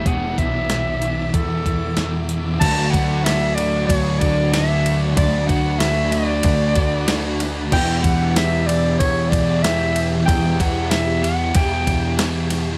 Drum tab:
CC |--------|x-------|--------|x-------|
RD |--------|xxxxxxxx|xxxxxxxx|-xxxxxxx|
HH |xxxxxxxx|--------|--------|--------|
SD |--o---o-|--o---o-|--o---oo|--o---o-|
BD |oo--oo--|oo--oo--|oo--oo--|oo--oo--|

CC |--------|
RD |xxxxxxxx|
HH |--------|
SD |--o---oo|
BD |oo--oo--|